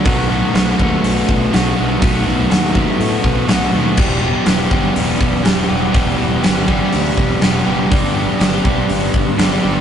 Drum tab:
CC |--------|--------|x-------|--------|
HH |o-o-o-o-|o-o-o-o-|--o-o-o-|o-o-o-o-|
SD |--o---o-|--o---o-|--o---o-|--o---o-|
BD |o--o-o--|o--o-o--|o--o-o--|o--o-o--|

CC |--------|
HH |o-o-o-o-|
SD |--o---o-|
BD |o--o-o--|